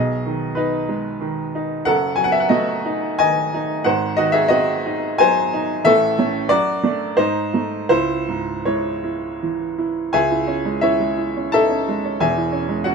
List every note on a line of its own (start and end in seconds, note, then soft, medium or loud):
0.00 1.81 B1 soft
0.00 1.79 B2 medium
0.00 0.54 G#4 medium
0.00 0.57 D#5 medium
0.26 0.76 D#3 soft
0.55 1.49 D#4 medium
0.55 1.52 B4 medium
0.89 1.40 G#3 soft
1.21 1.73 D#3 medium
1.55 1.86 D#4 soft
1.85 3.82 F#1 medium
1.85 3.82 F#2 medium
1.85 2.14 A4 medium
1.85 2.15 F#5 loud
2.16 2.71 F#3 soft
2.16 2.24 G#5 medium
2.24 2.33 F#5 medium
2.32 2.41 E5 medium
2.40 2.50 F#5 medium
2.49 3.06 A3 medium
2.49 3.17 F#4 medium
2.49 3.18 D#5 medium
2.86 3.41 D#4 medium
3.19 3.73 D#3 medium
3.19 3.81 D#5 medium
3.19 3.85 G#5 loud
3.54 3.86 D#4 medium
3.84 5.81 G#1 medium
3.84 5.82 G#2 medium
3.84 4.15 C5 medium
3.84 4.17 F#5 loud
4.17 4.70 D#3 medium
4.17 4.32 F#4 medium
4.17 4.33 D#5 loud
4.32 4.49 G#4 medium
4.32 4.49 E5 medium
4.48 5.06 C4 medium
4.48 5.16 F#4 medium
4.48 5.19 D#5 loud
4.86 5.41 D#4 medium
5.18 5.73 F#3 medium
5.18 5.82 C5 medium
5.18 5.85 G#5 loud
5.54 5.86 D#4 medium
5.84 6.48 A1 medium
5.84 6.49 A2 medium
5.84 6.47 A4 medium
5.84 6.50 E5 loud
6.19 6.48 A3 medium
6.19 6.48 C#4 medium
6.49 7.17 F#2 medium
6.49 7.15 F#4 medium
6.49 7.18 D5 loud
6.84 7.15 A3 medium
6.84 7.15 D4 medium
7.17 7.89 G#2 medium
7.17 7.52 D#4 medium
7.17 7.88 C5 medium
7.54 7.88 A3 soft
7.54 7.87 D#4 soft
7.89 10.09 C#2 medium
7.89 8.62 E4 medium
7.89 8.66 C5 medium
8.29 8.89 G#2 soft
8.65 9.27 G#3 medium
8.65 9.02 E4 medium
8.65 9.78 C#5 medium
9.04 9.64 E4 soft
9.43 10.00 E3 soft
9.78 10.13 E4 soft
10.13 12.18 C#2 medium
10.13 10.78 G#4 medium
10.13 10.78 E5 medium
10.13 10.82 G#5 medium
10.31 10.58 E4 soft
10.47 10.75 C#4 medium
10.65 10.93 G#3 soft
10.81 11.11 C#4 medium
10.81 11.16 E4 medium
10.81 11.51 C#5 medium
10.81 11.52 E5 medium
11.00 11.30 G#3 soft
11.18 11.47 E4 medium
11.37 11.65 C#4 soft
11.52 11.71 D#4 soft
11.52 12.18 A4 medium
11.52 12.18 E5 medium
11.52 12.21 A5 loud
11.70 11.98 C#4 soft
11.89 12.15 G#3 medium
12.05 12.22 C#4 soft
12.20 12.95 E1 medium
12.20 12.95 E2 medium
12.20 12.82 G#4 medium
12.20 12.82 E5 medium
12.20 12.86 G#5 medium
12.37 12.64 E4 soft
12.52 12.79 C#4 medium
12.69 12.95 G#3 soft
12.84 12.95 C#4 medium
12.84 12.95 F#4 medium
12.84 12.95 F#5 medium